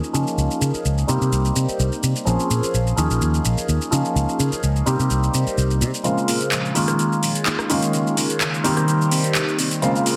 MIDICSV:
0, 0, Header, 1, 5, 480
1, 0, Start_track
1, 0, Tempo, 472441
1, 383, Time_signature, 4, 2, 24, 8
1, 10326, End_track
2, 0, Start_track
2, 0, Title_t, "Grand piano"
2, 0, Program_c, 0, 0
2, 0, Note_on_c, 0, 63, 68
2, 0, Note_on_c, 0, 68, 81
2, 102, Note_off_c, 0, 63, 0
2, 103, Note_off_c, 0, 68, 0
2, 135, Note_on_c, 0, 53, 77
2, 139, Note_on_c, 0, 58, 69
2, 145, Note_on_c, 0, 61, 68
2, 149, Note_on_c, 0, 63, 67
2, 152, Note_on_c, 0, 68, 82
2, 1055, Note_off_c, 0, 53, 0
2, 1057, Note_off_c, 0, 58, 0
2, 1059, Note_off_c, 0, 61, 0
2, 1062, Note_off_c, 0, 63, 0
2, 1063, Note_off_c, 0, 68, 0
2, 1090, Note_on_c, 0, 55, 88
2, 1095, Note_on_c, 0, 58, 80
2, 1099, Note_on_c, 0, 60, 81
2, 1103, Note_on_c, 0, 63, 79
2, 1106, Note_on_c, 0, 67, 98
2, 2252, Note_off_c, 0, 55, 0
2, 2254, Note_off_c, 0, 58, 0
2, 2256, Note_off_c, 0, 60, 0
2, 2258, Note_off_c, 0, 63, 0
2, 2260, Note_off_c, 0, 67, 0
2, 2288, Note_on_c, 0, 53, 74
2, 2294, Note_on_c, 0, 58, 68
2, 2298, Note_on_c, 0, 60, 69
2, 2303, Note_on_c, 0, 61, 69
2, 2306, Note_on_c, 0, 68, 84
2, 2971, Note_off_c, 0, 53, 0
2, 2974, Note_off_c, 0, 58, 0
2, 2976, Note_off_c, 0, 60, 0
2, 2979, Note_off_c, 0, 61, 0
2, 2980, Note_off_c, 0, 68, 0
2, 3011, Note_on_c, 0, 53, 75
2, 3017, Note_on_c, 0, 58, 72
2, 3019, Note_on_c, 0, 61, 71
2, 3026, Note_on_c, 0, 63, 71
2, 3030, Note_on_c, 0, 68, 85
2, 3933, Note_off_c, 0, 53, 0
2, 3936, Note_off_c, 0, 58, 0
2, 3937, Note_off_c, 0, 61, 0
2, 3940, Note_off_c, 0, 63, 0
2, 3942, Note_off_c, 0, 68, 0
2, 3972, Note_on_c, 0, 53, 77
2, 3976, Note_on_c, 0, 58, 69
2, 3979, Note_on_c, 0, 61, 68
2, 3985, Note_on_c, 0, 63, 66
2, 3987, Note_on_c, 0, 68, 85
2, 4893, Note_off_c, 0, 53, 0
2, 4895, Note_off_c, 0, 58, 0
2, 4896, Note_off_c, 0, 61, 0
2, 4899, Note_off_c, 0, 63, 0
2, 4901, Note_off_c, 0, 68, 0
2, 4935, Note_on_c, 0, 55, 87
2, 4938, Note_on_c, 0, 58, 80
2, 4943, Note_on_c, 0, 60, 79
2, 4948, Note_on_c, 0, 63, 77
2, 4950, Note_on_c, 0, 67, 96
2, 6095, Note_off_c, 0, 55, 0
2, 6096, Note_off_c, 0, 58, 0
2, 6098, Note_off_c, 0, 60, 0
2, 6101, Note_off_c, 0, 63, 0
2, 6102, Note_off_c, 0, 67, 0
2, 6132, Note_on_c, 0, 49, 76
2, 6136, Note_on_c, 0, 56, 71
2, 6139, Note_on_c, 0, 58, 71
2, 6142, Note_on_c, 0, 60, 69
2, 6149, Note_on_c, 0, 65, 87
2, 6813, Note_off_c, 0, 49, 0
2, 6815, Note_off_c, 0, 56, 0
2, 6817, Note_off_c, 0, 58, 0
2, 6818, Note_off_c, 0, 60, 0
2, 6822, Note_off_c, 0, 65, 0
2, 6852, Note_on_c, 0, 51, 73
2, 6856, Note_on_c, 0, 56, 70
2, 6860, Note_on_c, 0, 58, 73
2, 6864, Note_on_c, 0, 61, 69
2, 6868, Note_on_c, 0, 65, 88
2, 7773, Note_off_c, 0, 51, 0
2, 7775, Note_off_c, 0, 56, 0
2, 7777, Note_off_c, 0, 58, 0
2, 7779, Note_off_c, 0, 61, 0
2, 7781, Note_off_c, 0, 65, 0
2, 7814, Note_on_c, 0, 51, 76
2, 7818, Note_on_c, 0, 56, 72
2, 7822, Note_on_c, 0, 58, 70
2, 7826, Note_on_c, 0, 61, 74
2, 7832, Note_on_c, 0, 65, 85
2, 8734, Note_off_c, 0, 51, 0
2, 8736, Note_off_c, 0, 56, 0
2, 8738, Note_off_c, 0, 58, 0
2, 8740, Note_off_c, 0, 61, 0
2, 8743, Note_off_c, 0, 65, 0
2, 8775, Note_on_c, 0, 51, 92
2, 8777, Note_on_c, 0, 55, 81
2, 8781, Note_on_c, 0, 58, 83
2, 8786, Note_on_c, 0, 60, 80
2, 8790, Note_on_c, 0, 67, 96
2, 9934, Note_off_c, 0, 51, 0
2, 9936, Note_off_c, 0, 55, 0
2, 9938, Note_off_c, 0, 58, 0
2, 9940, Note_off_c, 0, 60, 0
2, 9942, Note_off_c, 0, 67, 0
2, 9974, Note_on_c, 0, 49, 74
2, 9977, Note_on_c, 0, 56, 68
2, 9981, Note_on_c, 0, 58, 68
2, 9984, Note_on_c, 0, 60, 69
2, 9990, Note_on_c, 0, 65, 82
2, 10326, Note_off_c, 0, 49, 0
2, 10326, Note_off_c, 0, 56, 0
2, 10326, Note_off_c, 0, 58, 0
2, 10326, Note_off_c, 0, 60, 0
2, 10326, Note_off_c, 0, 65, 0
2, 10326, End_track
3, 0, Start_track
3, 0, Title_t, "Fingered electric bass"
3, 0, Program_c, 1, 33
3, 141, Note_on_c, 1, 49, 78
3, 236, Note_off_c, 1, 49, 0
3, 380, Note_on_c, 1, 37, 92
3, 475, Note_off_c, 1, 37, 0
3, 620, Note_on_c, 1, 49, 95
3, 715, Note_off_c, 1, 49, 0
3, 862, Note_on_c, 1, 37, 72
3, 1042, Note_off_c, 1, 37, 0
3, 1102, Note_on_c, 1, 48, 99
3, 1196, Note_off_c, 1, 48, 0
3, 1230, Note_on_c, 1, 48, 93
3, 1312, Note_off_c, 1, 48, 0
3, 1341, Note_on_c, 1, 36, 88
3, 1521, Note_off_c, 1, 36, 0
3, 1582, Note_on_c, 1, 48, 77
3, 1676, Note_off_c, 1, 48, 0
3, 1821, Note_on_c, 1, 36, 96
3, 1915, Note_off_c, 1, 36, 0
3, 2063, Note_on_c, 1, 48, 81
3, 2156, Note_off_c, 1, 48, 0
3, 2301, Note_on_c, 1, 34, 92
3, 2395, Note_off_c, 1, 34, 0
3, 2540, Note_on_c, 1, 46, 93
3, 2635, Note_off_c, 1, 46, 0
3, 2782, Note_on_c, 1, 34, 71
3, 2961, Note_off_c, 1, 34, 0
3, 3020, Note_on_c, 1, 39, 98
3, 3115, Note_off_c, 1, 39, 0
3, 3150, Note_on_c, 1, 34, 96
3, 3232, Note_off_c, 1, 34, 0
3, 3262, Note_on_c, 1, 39, 88
3, 3442, Note_off_c, 1, 39, 0
3, 3503, Note_on_c, 1, 34, 76
3, 3597, Note_off_c, 1, 34, 0
3, 3742, Note_on_c, 1, 39, 91
3, 3836, Note_off_c, 1, 39, 0
3, 3982, Note_on_c, 1, 49, 77
3, 4076, Note_off_c, 1, 49, 0
3, 4220, Note_on_c, 1, 37, 100
3, 4315, Note_off_c, 1, 37, 0
3, 4463, Note_on_c, 1, 49, 97
3, 4557, Note_off_c, 1, 49, 0
3, 4704, Note_on_c, 1, 37, 77
3, 4883, Note_off_c, 1, 37, 0
3, 4943, Note_on_c, 1, 48, 101
3, 5036, Note_off_c, 1, 48, 0
3, 5072, Note_on_c, 1, 48, 97
3, 5153, Note_off_c, 1, 48, 0
3, 5183, Note_on_c, 1, 36, 85
3, 5362, Note_off_c, 1, 36, 0
3, 5424, Note_on_c, 1, 48, 76
3, 5517, Note_off_c, 1, 48, 0
3, 5662, Note_on_c, 1, 36, 85
3, 5901, Note_on_c, 1, 48, 95
3, 5916, Note_off_c, 1, 36, 0
3, 5995, Note_off_c, 1, 48, 0
3, 6143, Note_on_c, 1, 34, 96
3, 6236, Note_off_c, 1, 34, 0
3, 6384, Note_on_c, 1, 46, 95
3, 6477, Note_off_c, 1, 46, 0
3, 6624, Note_on_c, 1, 34, 73
3, 6803, Note_off_c, 1, 34, 0
3, 6863, Note_on_c, 1, 39, 100
3, 6957, Note_off_c, 1, 39, 0
3, 6992, Note_on_c, 1, 34, 98
3, 7073, Note_off_c, 1, 34, 0
3, 7105, Note_on_c, 1, 39, 91
3, 7283, Note_off_c, 1, 39, 0
3, 7344, Note_on_c, 1, 34, 77
3, 7437, Note_off_c, 1, 34, 0
3, 7584, Note_on_c, 1, 39, 100
3, 7677, Note_off_c, 1, 39, 0
3, 7823, Note_on_c, 1, 49, 75
3, 7917, Note_off_c, 1, 49, 0
3, 8066, Note_on_c, 1, 37, 95
3, 8158, Note_off_c, 1, 37, 0
3, 8303, Note_on_c, 1, 49, 97
3, 8396, Note_off_c, 1, 49, 0
3, 8541, Note_on_c, 1, 37, 75
3, 8721, Note_off_c, 1, 37, 0
3, 8781, Note_on_c, 1, 48, 97
3, 8875, Note_off_c, 1, 48, 0
3, 8910, Note_on_c, 1, 48, 99
3, 8992, Note_off_c, 1, 48, 0
3, 9020, Note_on_c, 1, 36, 91
3, 9201, Note_off_c, 1, 36, 0
3, 9260, Note_on_c, 1, 48, 81
3, 9355, Note_off_c, 1, 48, 0
3, 9501, Note_on_c, 1, 36, 97
3, 9595, Note_off_c, 1, 36, 0
3, 9741, Note_on_c, 1, 48, 84
3, 9835, Note_off_c, 1, 48, 0
3, 9979, Note_on_c, 1, 34, 101
3, 10075, Note_off_c, 1, 34, 0
3, 10219, Note_on_c, 1, 46, 99
3, 10315, Note_off_c, 1, 46, 0
3, 10326, End_track
4, 0, Start_track
4, 0, Title_t, "Muted fingered electric bass strokes"
4, 749, Note_on_c, 9, 29, 41
4, 851, Note_off_c, 9, 29, 0
4, 1710, Note_on_c, 9, 29, 43
4, 1812, Note_off_c, 9, 29, 0
4, 2669, Note_on_c, 9, 29, 39
4, 2770, Note_off_c, 9, 29, 0
4, 4593, Note_on_c, 9, 29, 41
4, 4695, Note_off_c, 9, 29, 0
4, 5553, Note_on_c, 9, 29, 44
4, 5654, Note_off_c, 9, 29, 0
4, 6514, Note_on_c, 9, 29, 41
4, 6616, Note_off_c, 9, 29, 0
4, 7474, Note_on_c, 9, 29, 44
4, 7576, Note_off_c, 9, 29, 0
4, 9391, Note_on_c, 9, 29, 45
4, 9492, Note_off_c, 9, 29, 0
4, 10326, End_track
5, 0, Start_track
5, 0, Title_t, "Drums"
5, 38, Note_on_c, 9, 82, 21
5, 140, Note_off_c, 9, 82, 0
5, 149, Note_on_c, 9, 82, 78
5, 251, Note_off_c, 9, 82, 0
5, 278, Note_on_c, 9, 82, 31
5, 380, Note_off_c, 9, 82, 0
5, 388, Note_on_c, 9, 82, 41
5, 490, Note_off_c, 9, 82, 0
5, 517, Note_on_c, 9, 82, 21
5, 619, Note_off_c, 9, 82, 0
5, 626, Note_on_c, 9, 82, 79
5, 727, Note_off_c, 9, 82, 0
5, 755, Note_on_c, 9, 82, 32
5, 857, Note_off_c, 9, 82, 0
5, 866, Note_on_c, 9, 82, 44
5, 967, Note_off_c, 9, 82, 0
5, 996, Note_on_c, 9, 82, 22
5, 1097, Note_off_c, 9, 82, 0
5, 1106, Note_on_c, 9, 82, 79
5, 1208, Note_off_c, 9, 82, 0
5, 1236, Note_on_c, 9, 82, 34
5, 1338, Note_off_c, 9, 82, 0
5, 1345, Note_on_c, 9, 82, 43
5, 1447, Note_off_c, 9, 82, 0
5, 1475, Note_on_c, 9, 82, 22
5, 1577, Note_off_c, 9, 82, 0
5, 1585, Note_on_c, 9, 82, 79
5, 1687, Note_off_c, 9, 82, 0
5, 1715, Note_on_c, 9, 82, 33
5, 1816, Note_off_c, 9, 82, 0
5, 1826, Note_on_c, 9, 82, 43
5, 1928, Note_off_c, 9, 82, 0
5, 1954, Note_on_c, 9, 82, 21
5, 2056, Note_off_c, 9, 82, 0
5, 2067, Note_on_c, 9, 82, 76
5, 2168, Note_off_c, 9, 82, 0
5, 2194, Note_on_c, 9, 82, 33
5, 2296, Note_off_c, 9, 82, 0
5, 2304, Note_on_c, 9, 82, 43
5, 2406, Note_off_c, 9, 82, 0
5, 2435, Note_on_c, 9, 82, 22
5, 2537, Note_off_c, 9, 82, 0
5, 2547, Note_on_c, 9, 82, 75
5, 2649, Note_off_c, 9, 82, 0
5, 2677, Note_on_c, 9, 82, 33
5, 2779, Note_off_c, 9, 82, 0
5, 2788, Note_on_c, 9, 82, 47
5, 2890, Note_off_c, 9, 82, 0
5, 2917, Note_on_c, 9, 82, 23
5, 3018, Note_off_c, 9, 82, 0
5, 3027, Note_on_c, 9, 82, 77
5, 3129, Note_off_c, 9, 82, 0
5, 3156, Note_on_c, 9, 82, 34
5, 3258, Note_off_c, 9, 82, 0
5, 3267, Note_on_c, 9, 82, 46
5, 3369, Note_off_c, 9, 82, 0
5, 3397, Note_on_c, 9, 82, 22
5, 3499, Note_off_c, 9, 82, 0
5, 3506, Note_on_c, 9, 82, 79
5, 3608, Note_off_c, 9, 82, 0
5, 3635, Note_on_c, 9, 82, 33
5, 3736, Note_off_c, 9, 82, 0
5, 3747, Note_on_c, 9, 82, 47
5, 3849, Note_off_c, 9, 82, 0
5, 3876, Note_on_c, 9, 82, 22
5, 3978, Note_off_c, 9, 82, 0
5, 3988, Note_on_c, 9, 82, 81
5, 4090, Note_off_c, 9, 82, 0
5, 4117, Note_on_c, 9, 82, 32
5, 4219, Note_off_c, 9, 82, 0
5, 4230, Note_on_c, 9, 82, 42
5, 4332, Note_off_c, 9, 82, 0
5, 4359, Note_on_c, 9, 82, 22
5, 4460, Note_off_c, 9, 82, 0
5, 4469, Note_on_c, 9, 82, 80
5, 4570, Note_off_c, 9, 82, 0
5, 4596, Note_on_c, 9, 82, 33
5, 4698, Note_off_c, 9, 82, 0
5, 4707, Note_on_c, 9, 82, 46
5, 4808, Note_off_c, 9, 82, 0
5, 4837, Note_on_c, 9, 82, 21
5, 4939, Note_off_c, 9, 82, 0
5, 4947, Note_on_c, 9, 82, 75
5, 5049, Note_off_c, 9, 82, 0
5, 5077, Note_on_c, 9, 82, 33
5, 5179, Note_off_c, 9, 82, 0
5, 5186, Note_on_c, 9, 82, 42
5, 5288, Note_off_c, 9, 82, 0
5, 5317, Note_on_c, 9, 82, 23
5, 5419, Note_off_c, 9, 82, 0
5, 5427, Note_on_c, 9, 82, 77
5, 5529, Note_off_c, 9, 82, 0
5, 5557, Note_on_c, 9, 82, 33
5, 5659, Note_off_c, 9, 82, 0
5, 5669, Note_on_c, 9, 82, 45
5, 5770, Note_off_c, 9, 82, 0
5, 5798, Note_on_c, 9, 82, 22
5, 5899, Note_off_c, 9, 82, 0
5, 5910, Note_on_c, 9, 82, 78
5, 6011, Note_off_c, 9, 82, 0
5, 6038, Note_on_c, 9, 82, 33
5, 6140, Note_off_c, 9, 82, 0
5, 6140, Note_on_c, 9, 42, 49
5, 6148, Note_on_c, 9, 82, 39
5, 6241, Note_off_c, 9, 42, 0
5, 6250, Note_off_c, 9, 82, 0
5, 6277, Note_on_c, 9, 82, 21
5, 6378, Note_off_c, 9, 82, 0
5, 6381, Note_on_c, 9, 46, 106
5, 6389, Note_on_c, 9, 82, 73
5, 6483, Note_off_c, 9, 46, 0
5, 6491, Note_off_c, 9, 82, 0
5, 6510, Note_on_c, 9, 42, 64
5, 6518, Note_on_c, 9, 82, 31
5, 6611, Note_off_c, 9, 42, 0
5, 6619, Note_off_c, 9, 82, 0
5, 6620, Note_on_c, 9, 39, 116
5, 6623, Note_on_c, 9, 42, 53
5, 6631, Note_on_c, 9, 82, 44
5, 6722, Note_off_c, 9, 39, 0
5, 6724, Note_off_c, 9, 42, 0
5, 6732, Note_off_c, 9, 82, 0
5, 6760, Note_on_c, 9, 82, 20
5, 6860, Note_on_c, 9, 46, 91
5, 6862, Note_off_c, 9, 82, 0
5, 6868, Note_on_c, 9, 82, 77
5, 6962, Note_off_c, 9, 46, 0
5, 6970, Note_off_c, 9, 82, 0
5, 6989, Note_on_c, 9, 37, 59
5, 6989, Note_on_c, 9, 42, 68
5, 6997, Note_on_c, 9, 82, 32
5, 7091, Note_off_c, 9, 37, 0
5, 7091, Note_off_c, 9, 42, 0
5, 7099, Note_off_c, 9, 82, 0
5, 7102, Note_on_c, 9, 42, 52
5, 7110, Note_on_c, 9, 82, 42
5, 7204, Note_off_c, 9, 42, 0
5, 7212, Note_off_c, 9, 82, 0
5, 7239, Note_on_c, 9, 82, 22
5, 7340, Note_off_c, 9, 82, 0
5, 7342, Note_on_c, 9, 46, 100
5, 7350, Note_on_c, 9, 82, 74
5, 7444, Note_off_c, 9, 46, 0
5, 7452, Note_off_c, 9, 82, 0
5, 7471, Note_on_c, 9, 42, 66
5, 7479, Note_on_c, 9, 82, 31
5, 7573, Note_off_c, 9, 42, 0
5, 7577, Note_on_c, 9, 39, 124
5, 7579, Note_on_c, 9, 42, 54
5, 7581, Note_off_c, 9, 82, 0
5, 7587, Note_on_c, 9, 82, 42
5, 7679, Note_off_c, 9, 39, 0
5, 7681, Note_off_c, 9, 42, 0
5, 7689, Note_off_c, 9, 82, 0
5, 7709, Note_on_c, 9, 37, 73
5, 7717, Note_on_c, 9, 82, 21
5, 7810, Note_off_c, 9, 37, 0
5, 7819, Note_off_c, 9, 82, 0
5, 7820, Note_on_c, 9, 46, 92
5, 7828, Note_on_c, 9, 82, 79
5, 7921, Note_off_c, 9, 46, 0
5, 7929, Note_off_c, 9, 82, 0
5, 7950, Note_on_c, 9, 42, 65
5, 7958, Note_on_c, 9, 82, 33
5, 8051, Note_off_c, 9, 42, 0
5, 8059, Note_off_c, 9, 82, 0
5, 8060, Note_on_c, 9, 42, 48
5, 8068, Note_on_c, 9, 82, 41
5, 8162, Note_off_c, 9, 42, 0
5, 8170, Note_off_c, 9, 82, 0
5, 8200, Note_on_c, 9, 82, 20
5, 8302, Note_off_c, 9, 82, 0
5, 8302, Note_on_c, 9, 46, 111
5, 8310, Note_on_c, 9, 82, 77
5, 8404, Note_off_c, 9, 46, 0
5, 8412, Note_off_c, 9, 82, 0
5, 8432, Note_on_c, 9, 42, 60
5, 8440, Note_on_c, 9, 82, 31
5, 8534, Note_off_c, 9, 42, 0
5, 8541, Note_on_c, 9, 39, 123
5, 8542, Note_off_c, 9, 82, 0
5, 8543, Note_on_c, 9, 42, 52
5, 8551, Note_on_c, 9, 82, 43
5, 8642, Note_off_c, 9, 39, 0
5, 8645, Note_off_c, 9, 42, 0
5, 8653, Note_off_c, 9, 82, 0
5, 8679, Note_on_c, 9, 82, 21
5, 8781, Note_off_c, 9, 82, 0
5, 8783, Note_on_c, 9, 46, 92
5, 8791, Note_on_c, 9, 82, 71
5, 8884, Note_off_c, 9, 46, 0
5, 8892, Note_off_c, 9, 82, 0
5, 8911, Note_on_c, 9, 37, 63
5, 8911, Note_on_c, 9, 42, 66
5, 8919, Note_on_c, 9, 82, 31
5, 9012, Note_off_c, 9, 37, 0
5, 9012, Note_off_c, 9, 42, 0
5, 9020, Note_off_c, 9, 82, 0
5, 9021, Note_on_c, 9, 42, 52
5, 9029, Note_on_c, 9, 82, 43
5, 9123, Note_off_c, 9, 42, 0
5, 9131, Note_off_c, 9, 82, 0
5, 9159, Note_on_c, 9, 82, 21
5, 9260, Note_on_c, 9, 46, 102
5, 9261, Note_off_c, 9, 82, 0
5, 9268, Note_on_c, 9, 82, 75
5, 9362, Note_off_c, 9, 46, 0
5, 9370, Note_off_c, 9, 82, 0
5, 9390, Note_on_c, 9, 42, 67
5, 9398, Note_on_c, 9, 82, 30
5, 9492, Note_off_c, 9, 42, 0
5, 9498, Note_on_c, 9, 39, 126
5, 9500, Note_off_c, 9, 82, 0
5, 9500, Note_on_c, 9, 42, 53
5, 9508, Note_on_c, 9, 82, 42
5, 9600, Note_off_c, 9, 39, 0
5, 9602, Note_off_c, 9, 42, 0
5, 9610, Note_off_c, 9, 82, 0
5, 9636, Note_on_c, 9, 82, 21
5, 9737, Note_off_c, 9, 82, 0
5, 9739, Note_on_c, 9, 46, 96
5, 9747, Note_on_c, 9, 82, 79
5, 9841, Note_off_c, 9, 46, 0
5, 9849, Note_off_c, 9, 82, 0
5, 9868, Note_on_c, 9, 42, 62
5, 9876, Note_on_c, 9, 82, 32
5, 9970, Note_off_c, 9, 42, 0
5, 9978, Note_off_c, 9, 82, 0
5, 9980, Note_on_c, 9, 42, 46
5, 9988, Note_on_c, 9, 82, 40
5, 10082, Note_off_c, 9, 42, 0
5, 10090, Note_off_c, 9, 82, 0
5, 10118, Note_on_c, 9, 82, 21
5, 10219, Note_off_c, 9, 82, 0
5, 10221, Note_on_c, 9, 46, 105
5, 10229, Note_on_c, 9, 82, 77
5, 10323, Note_off_c, 9, 46, 0
5, 10326, Note_off_c, 9, 82, 0
5, 10326, End_track
0, 0, End_of_file